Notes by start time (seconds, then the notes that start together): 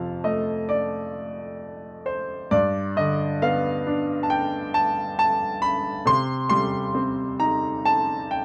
Already playing: F2 C3 F3 F5 A5
0.24 A3 D#5
0.69 D5
2.06 C5
2.51 G2 D5
2.97 D3 D#5
3.42 B3 F5
3.87 D4
4.23 A5
4.30 G5
4.74 A5
5.19 A5
5.62 B5
6.06 C3 C6
6.50 G3 C6
6.95 C4
7.40 D#4 A#5
7.85 A5
8.31 G5